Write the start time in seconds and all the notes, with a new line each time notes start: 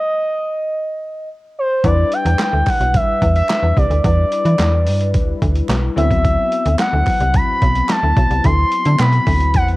Already playing: D#5
1.59 C5
1.84 E2 G3 D4 E4 B4 D5, kick, closed hi-hat
2.12 G5, closed hi-hat
2.25 E2, closed hi-hat
2.39 snare, clap, closed hi-hat
2.53 D2
2.67 F#5, kick, clap, open hi-hat
2.81 B1, closed hi-hat
2.94 E5, kick, closed hi-hat
3.22 E2, kick, closed hi-hat
3.36 E5, closed hi-hat
3.49 snare, clap, closed hi-hat
3.63 E2
3.77 C2 D5, kick, closed hi-hat
3.90 D2, closed hi-hat
4.04 E2 D5, kick, closed hi-hat
4.32 closed hi-hat
4.45 E3, closed hi-hat
4.59 E2, snare, clap, closed hi-hat
4.87 G2, open hi-hat
5.01 closed hi-hat
5.14 D2, kick, closed hi-hat
5.42 D2, kick, closed hi-hat
5.55 closed hi-hat
5.69 B1, snare, clap, closed hi-hat
5.96 D2 F#3 B3 C4 E4 E5, closed hi-hat
6.10 kick, closed hi-hat
6.24 kick, closed hi-hat
6.52 closed hi-hat
6.66 D2, closed hi-hat
6.79 F#5, snare, clap, closed hi-hat
6.93 D2
7.07 kick, clap, open hi-hat
7.21 C2, closed hi-hat
7.34 B5, kick, closed hi-hat
7.62 B1, kick, closed hi-hat
7.76 closed hi-hat
7.89 A5, snare, clap, closed hi-hat
8.03 D2
8.17 B1, kick, closed hi-hat
8.31 C2, closed hi-hat
8.44 D2 C6, kick, closed hi-hat
8.72 closed hi-hat
8.86 D3, closed hi-hat
8.99 B2 B5, snare, clap, closed hi-hat
9.13 closed hi-hat
9.27 D2, kick, open hi-hat
9.40 closed hi-hat
9.54 E2 F#5, kick, closed hi-hat
9.68 closed hi-hat